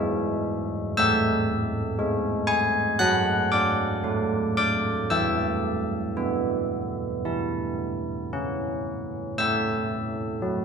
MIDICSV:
0, 0, Header, 1, 2, 480
1, 0, Start_track
1, 0, Key_signature, 3, "major"
1, 0, Tempo, 1016949
1, 458, Time_signature, 4, 2, 24, 8
1, 1417, Tempo, 1065719
1, 3817, Tempo, 1043478
1, 4883, End_track
2, 0, Start_track
2, 0, Title_t, "Church bells"
2, 0, Program_c, 0, 14
2, 0, Note_on_c, 0, 56, 71
2, 0, Note_on_c, 0, 76, 87
2, 0, Note_on_c, 0, 88, 107
2, 360, Note_off_c, 0, 56, 0
2, 441, Note_off_c, 0, 88, 0
2, 443, Note_off_c, 0, 76, 0
2, 459, Note_on_c, 0, 88, 100
2, 462, Note_on_c, 0, 57, 78
2, 469, Note_on_c, 0, 76, 77
2, 842, Note_off_c, 0, 57, 0
2, 939, Note_on_c, 0, 56, 67
2, 1156, Note_off_c, 0, 88, 0
2, 1161, Note_off_c, 0, 76, 0
2, 1167, Note_on_c, 0, 80, 104
2, 1173, Note_off_c, 0, 80, 0
2, 1173, Note_on_c, 0, 80, 75
2, 1323, Note_off_c, 0, 56, 0
2, 1400, Note_off_c, 0, 80, 0
2, 1412, Note_on_c, 0, 90, 96
2, 1415, Note_on_c, 0, 54, 70
2, 1421, Note_on_c, 0, 78, 74
2, 1638, Note_off_c, 0, 78, 0
2, 1641, Note_off_c, 0, 90, 0
2, 1649, Note_on_c, 0, 86, 77
2, 1657, Note_on_c, 0, 74, 62
2, 1795, Note_off_c, 0, 54, 0
2, 1884, Note_on_c, 0, 57, 69
2, 2109, Note_off_c, 0, 86, 0
2, 2113, Note_off_c, 0, 74, 0
2, 2124, Note_on_c, 0, 86, 93
2, 2128, Note_on_c, 0, 74, 66
2, 2270, Note_off_c, 0, 57, 0
2, 2352, Note_off_c, 0, 74, 0
2, 2357, Note_off_c, 0, 86, 0
2, 2363, Note_on_c, 0, 88, 75
2, 2365, Note_on_c, 0, 52, 66
2, 2368, Note_on_c, 0, 76, 65
2, 2754, Note_off_c, 0, 52, 0
2, 2843, Note_on_c, 0, 59, 64
2, 3235, Note_off_c, 0, 59, 0
2, 3331, Note_on_c, 0, 64, 59
2, 3718, Note_off_c, 0, 64, 0
2, 3817, Note_on_c, 0, 61, 59
2, 4039, Note_off_c, 0, 88, 0
2, 4042, Note_off_c, 0, 76, 0
2, 4204, Note_off_c, 0, 61, 0
2, 4300, Note_on_c, 0, 57, 58
2, 4301, Note_on_c, 0, 88, 81
2, 4310, Note_on_c, 0, 76, 64
2, 4683, Note_off_c, 0, 57, 0
2, 4778, Note_on_c, 0, 54, 57
2, 4883, Note_off_c, 0, 54, 0
2, 4883, Note_off_c, 0, 76, 0
2, 4883, Note_off_c, 0, 88, 0
2, 4883, End_track
0, 0, End_of_file